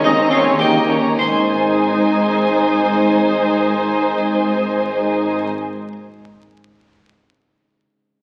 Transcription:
0.00 0.95 D#2 medium
0.00 0.58 D#3 soft
0.00 0.95 D#3 medium
0.00 0.62 G#3 soft
0.00 0.19 G#3 soft
0.00 0.19 C#4 soft
0.00 0.30 D#4 soft
0.00 0.62 G#4 soft
0.00 0.31 D#5 soft
0.04 0.58 C4 medium
0.04 0.29 D#4 medium
0.04 0.31 D#4 soft
0.04 0.31 A#5 soft
0.31 0.59 C#4 soft
0.31 0.87 D#4 soft
0.31 0.57 F4 medium
0.31 0.59 C#5 soft
0.31 0.60 G#5 soft
0.59 1.21 D#3 soft
0.59 0.89 A#3 soft
0.59 0.76 A#3 soft
0.59 0.76 C#4 soft
0.59 0.87 D#4 soft
0.59 1.14 G4 medium
0.59 0.87 D#5 soft
0.59 0.87 G5 soft
0.88 1.18 C#4 soft
0.88 1.38 D#4 soft
0.88 1.21 A#4 soft
0.88 1.18 C#5 soft
0.88 1.19 A#5 soft
1.18 5.45 G#1 soft
1.18 5.91 G#2 soft
1.18 5.45 G#2 soft
1.18 5.45 G#3 soft
1.18 5.45 D#4 soft
1.18 5.45 C5 medium
1.18 5.92 C5 medium
1.18 5.45 G#5 soft
1.25 5.98 G#3 soft
1.32 6.05 C4 soft
1.39 6.12 D#4 soft
1.46 6.19 C5 soft
1.53 6.26 D#5 soft

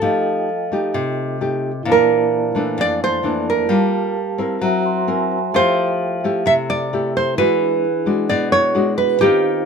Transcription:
0.00 0.92 F3 medium
0.00 0.48 A3 medium
0.00 0.48 D#4 medium
0.00 1.81 F4 soft
0.00 0.48 G4 medium
0.00 1.14 A4 medium
0.00 1.83 A4 soft
0.00 1.83 D#5 soft
0.06 1.84 G5 medium
0.72 1.37 A3 medium
0.72 1.37 D#4 medium
0.72 1.37 G4 medium
0.94 1.84 C3 medium
1.41 1.70 A3 soft
1.41 1.70 D#4 medium
1.41 1.71 G4 medium
1.83 2.75 A#2 medium
1.83 2.51 E3 medium
1.83 3.20 A#3 soft
1.83 2.52 D4 medium
1.83 3.20 E4 soft
1.83 3.21 C5 soft
1.87 3.22 D5 soft
1.87 3.23 A5 medium
1.92 2.80 A#4 medium
2.55 3.20 E3 medium
2.55 3.21 A3 medium
2.55 3.21 D4 medium
2.78 3.68 F2 medium
2.78 3.03 D5 medium
3.04 3.49 C5 medium
3.23 3.66 E3 medium
3.23 3.66 A3 soft
3.23 3.70 A#3 soft
3.23 3.67 D4 medium
3.23 3.70 E4 soft
3.23 3.70 C5 soft
3.23 3.71 D5 soft
3.23 3.71 A5 soft
3.50 4.82 A#4 medium
3.67 4.59 G3 medium
3.67 4.15 A#3 soft
3.67 4.15 F4 medium
3.67 4.58 G4 soft
3.67 4.60 F5 soft
3.72 4.61 A5 medium
4.38 5.04 C4 medium
4.38 5.04 E4 medium
4.38 5.04 A#4 medium
4.59 5.51 F#3 medium
4.59 5.50 F#4 medium
4.59 5.52 C5 soft
4.59 5.52 E5 medium
4.64 5.53 A#5 medium
4.86 5.07 C6 soft
5.07 5.37 C4 medium
5.07 5.37 E4 medium
5.07 5.38 A#4 medium
5.07 5.29 G#5 medium
5.31 5.52 F#5 soft
5.52 6.43 F3 medium
5.52 6.19 A3 medium
5.52 6.19 E4 medium
5.52 6.19 G4 medium
5.52 7.33 A4 soft
5.52 6.46 C5 medium
5.52 7.34 E5 soft
5.57 7.35 G5 soft
6.24 6.88 A3 medium
6.24 6.89 E4 medium
6.24 6.89 G4 medium
6.46 7.35 C3 medium
6.46 6.53 E5 medium
6.70 7.16 D5 medium
6.93 7.34 A3 soft
6.93 7.34 E4 medium
6.93 7.35 G4 medium
7.17 7.38 C5 medium
7.34 8.27 E3 medium
7.34 7.83 G#3 medium
7.34 9.16 E4 soft
7.34 9.17 G#4 soft
7.34 8.29 B4 medium
7.38 7.83 D4 soft
7.38 9.18 D4 soft
7.38 7.84 F#4 medium
7.38 9.19 F#5 soft
8.06 8.71 G#3 medium
8.06 8.71 D4 medium
8.06 8.72 F#4 medium
8.29 9.19 B2 medium
8.29 8.51 D5 medium
8.52 8.97 C#5 medium
8.75 9.17 G#3 medium
8.75 9.17 D4 medium
8.75 9.17 F#4 medium
8.98 9.21 B4 medium
9.19 9.65 D#3 medium
9.19 9.65 C4 medium
9.19 9.65 D#4 soft
9.19 9.65 F4 medium
9.19 9.65 G4 medium
9.19 9.65 G4 soft
9.19 9.65 G4 medium
9.23 9.65 C5 soft
9.23 9.65 F5 medium

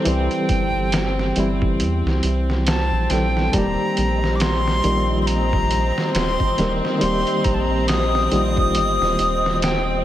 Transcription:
0.00 0.05 E3 medium
0.00 0.07 G3 medium
0.00 0.09 C4 medium
0.00 3.53 C4 medium
0.00 3.13 A4 medium
0.05 0.28 C2 medium
0.05 1.31 E3 medium
0.05 1.33 G3 medium
0.05 1.77 G5 medium
0.05 closed hi-hat medium
0.09 1.34 C4 medium
0.09 1.35 G4 medium
0.31 closed hi-hat soft
0.49 1.33 G1 medium
0.49 kick loud
0.49 closed hi-hat medium
0.92 snare loud
0.92 closed hi-hat medium
1.19 snare soft
1.36 1.81 G1 loud
1.36 1.76 E3 medium
1.36 1.77 G3 medium
1.36 1.78 C4 medium
1.36 1.78 E4 medium
1.36 closed hi-hat medium
1.62 kick loud
1.80 2.02 E2 medium
1.80 closed hi-hat medium
2.05 2.21 C2 loud
2.05 snare soft
2.23 2.92 C2 medium
2.23 closed hi-hat medium
2.50 snare soft
2.67 3.12 A5 loud
2.67 snare loud
2.67 closed hi-hat medium
2.92 3.08 A#1 medium
3.10 3.49 A#1 medium
3.10 3.49 E3 medium
3.10 3.50 G3 medium
3.10 3.50 C4 medium
3.10 3.51 A4 medium
3.10 3.55 G5 medium
3.10 snare medium
3.10 closed hi-hat medium
3.37 snare soft
3.51 3.76 D#1 medium
3.51 4.79 D#3 medium
3.51 4.80 G3 medium
3.51 10.04 C4 medium
3.51 10.04 D#5 medium
3.51 4.37 A#5 loud
3.51 kick loud
3.51 closed hi-hat medium
3.56 4.81 A#3 medium
3.56 4.82 G4 loud
3.97 4.81 A#1 medium
3.97 closed hi-hat medium
4.24 snare soft
4.36 4.42 D6 medium
4.40 5.21 C6 loud
4.40 snare loud
4.40 closed hi-hat medium
4.68 snare medium
4.84 5.92 A#1 loud
4.84 5.24 D#3 medium
4.84 5.25 G3 medium
4.84 5.25 A#3 medium
4.84 5.26 F4 medium
4.84 closed hi-hat medium
5.22 5.28 C6 medium
5.26 6.13 A#5 loud
5.26 closed hi-hat medium
5.53 kick medium
5.71 closed hi-hat medium
5.98 snare medium
6.13 6.37 D#1 loud
6.13 6.73 C6 loud
6.13 snare loud
6.13 closed hi-hat medium
6.40 kick medium
6.58 6.81 D#1 medium
6.58 6.97 D#3 medium
6.58 6.98 G3 medium
6.58 6.98 A#3 medium
6.58 6.99 A#4 medium
6.58 snare soft
6.58 closed hi-hat medium
6.85 snare soft
6.99 7.24 D#1 loud
6.99 8.26 D#3 medium
6.99 8.27 G3 medium
6.99 7.46 C6 loud
6.99 closed hi-hat medium
7.03 8.29 A#3 medium
7.03 8.30 G4 loud
7.27 closed hi-hat soft
7.44 8.28 A#1 medium
7.44 7.56 A#5 medium
7.44 kick loud
7.44 closed hi-hat medium
7.54 7.62 A5 medium
7.61 7.89 A#5 loud
7.88 9.61 D#6 loud
7.88 snare loud
7.88 closed hi-hat medium
8.15 snare soft
8.31 8.77 A#1 medium
8.31 8.72 D#3 medium
8.31 8.72 G3 medium
8.31 8.73 A#3 medium
8.31 8.73 F4 loud
8.31 closed hi-hat medium
8.57 kick medium
8.75 8.98 G1 medium
8.75 closed hi-hat medium
9.01 9.17 D#1 loud
9.01 snare soft
9.19 10.04 D#1 medium
9.19 closed hi-hat medium
9.46 snare soft
9.62 10.03 G5 medium
9.62 snare loud
9.62 closed hi-hat medium

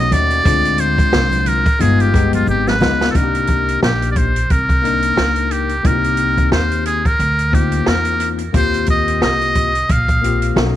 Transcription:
0.00 0.14 D#5 loud
0.10 0.44 D#2 loud
0.10 0.41 A3 medium
0.10 0.41 C#4 medium
0.10 0.42 D#4 medium
0.10 0.42 F#4 medium
0.10 0.82 D5 loud
0.10 closed hi-hat medium
0.10 low conga medium
0.10 shaker medium
0.30 closed hi-hat soft
0.30 shaker soft
0.44 0.96 D2 loud
0.44 1.62 G#3 medium
0.44 1.63 C4 medium
0.44 1.63 D4 medium
0.44 1.64 F4 medium
0.44 kick loud
0.44 closed hi-hat loud
0.44 shaker medium
0.65 closed hi-hat medium
0.65 shaker soft
0.78 1.49 C5 loud
0.78 closed hi-hat medium
0.78 shaker soft
0.98 muted upright bass stroke medium
0.98 kick medium
0.98 closed hi-hat soft
0.98 shaker soft
1.12 1.63 C2 medium
1.12 snare loud
1.12 low conga medium
1.12 shaker medium
1.31 closed hi-hat medium
1.31 high conga medium
1.31 shaker medium
1.46 1.82 A#4 medium
1.46 closed hi-hat medium
1.46 high conga soft
1.46 low conga medium
1.46 shaker soft
1.66 muted upright bass stroke soft
1.66 kick loud
1.66 closed hi-hat medium
1.66 shaker soft
1.79 2.44 G1 loud
1.79 2.09 G#3 medium
1.79 2.09 B3 medium
1.79 2.10 D#4 medium
1.79 2.11 F4 medium
1.79 2.02 G#4 medium
1.79 closed hi-hat medium
1.79 shaker medium
2.00 2.34 G4 medium
2.00 closed hi-hat soft
2.00 shaker soft
2.12 2.72 G#3 medium
2.12 2.73 B3 medium
2.12 2.73 D#4 medium
2.12 2.74 G4 medium
2.12 kick medium
2.12 closed hi-hat medium
2.12 shaker soft
2.33 2.47 F4 medium
2.33 closed hi-hat medium
2.33 high conga medium
2.33 shaker soft
2.47 2.79 G#1 medium
2.47 2.70 G4 medium
2.47 shaker medium
2.67 3.10 B4 medium
2.67 snare medium
2.67 high conga medium
2.67 shaker soft
2.80 3.13 C#2 loud
2.80 3.10 G#3 medium
2.80 3.11 B3 medium
2.80 3.11 D#4 medium
2.80 3.12 F4 medium
2.80 snare medium
2.80 low conga medium
2.80 shaker medium
3.00 snare loud
3.00 shaker soft
3.11 4.32 A#3 medium
3.11 4.32 D4 medium
3.11 3.17 A4 medium
3.15 3.79 C2 medium
3.15 4.33 D#4 medium
3.15 3.23 F#4 medium
3.15 3.82 A#4 medium
3.15 kick loud
3.15 closed hi-hat medium
3.23 4.37 G4 medium
3.35 closed hi-hat medium
3.47 kick medium
3.47 closed hi-hat medium
3.68 closed hi-hat soft
3.82 4.47 A#1 medium
3.82 4.08 G4 medium
3.82 snare loud
4.02 closed hi-hat soft
4.11 4.19 D5 medium
4.16 4.53 C5 medium
4.16 kick medium
4.16 closed hi-hat medium
4.36 closed hi-hat medium
4.50 5.14 C2 medium
4.50 5.53 A#4 medium
4.50 kick medium
4.50 closed hi-hat medium
4.69 kick medium
4.69 closed hi-hat soft
4.82 5.71 A#3 medium
4.82 5.72 D4 medium
4.82 5.72 D#4 medium
4.82 5.73 A#4 medium
4.82 closed hi-hat medium
5.03 closed hi-hat medium
5.17 5.81 C#2 medium
5.17 snare loud
5.36 closed hi-hat soft
5.51 5.88 G4 medium
5.51 closed hi-hat medium
5.69 closed hi-hat soft
5.83 6.49 C2 medium
5.83 7.01 A#3 medium
5.83 7.02 C4 medium
5.83 7.02 D#4 medium
5.83 5.93 F4 medium
5.83 6.52 A#4 loud
5.83 kick loud
5.83 closed hi-hat medium
5.93 7.06 G4 medium
6.04 closed hi-hat medium
6.17 closed hi-hat medium
6.38 kick medium
6.38 closed hi-hat soft
6.52 7.16 D#2 medium
6.52 6.84 C5 medium
6.52 snare loud
6.72 closed hi-hat soft
6.86 7.08 G#4 medium
6.86 closed hi-hat medium
7.05 7.56 A#4 medium
7.05 kick medium
7.05 closed hi-hat medium
7.19 7.83 D2 medium
7.19 closed hi-hat medium
7.39 closed hi-hat soft
7.52 8.41 A#3 medium
7.52 8.42 C4 medium
7.52 8.42 D#4 medium
7.52 8.43 F4 medium
7.52 7.90 G4 medium
7.52 kick medium
7.52 closed hi-hat medium
7.72 closed hi-hat medium
7.86 8.51 E2 medium
7.86 8.29 A#4 medium
7.86 snare loud
8.05 closed hi-hat medium
8.20 closed hi-hat medium
8.39 closed hi-hat soft
8.53 9.18 D#2 medium
8.53 9.71 A#3 medium
8.53 9.71 C4 medium
8.53 9.72 F4 medium
8.53 9.72 G4 medium
8.53 8.87 C5 loud
8.53 kick loud
8.53 closed hi-hat medium
8.74 closed hi-hat medium
8.86 9.20 D#5 medium
8.86 kick medium
8.86 closed hi-hat medium
9.08 closed hi-hat soft
9.21 9.86 C2 medium
9.21 9.93 D#5 loud
9.21 snare loud
9.41 closed hi-hat soft
9.55 kick medium
9.55 closed hi-hat medium
9.75 closed hi-hat medium
9.89 10.53 A#1 medium
9.89 10.58 F5 medium
9.89 kick medium
9.89 closed hi-hat medium
10.08 kick medium
10.08 closed hi-hat soft
10.22 10.56 A#3 medium
10.22 10.57 C4 medium
10.22 10.57 F4 medium
10.22 10.58 G4 medium
10.22 closed hi-hat medium
10.42 closed hi-hat medium
10.55 10.76 B1 loud
10.55 10.76 A3 medium
10.55 10.76 C#4 medium
10.55 10.76 D#4 medium
10.55 10.76 F#4 medium
10.55 snare loud

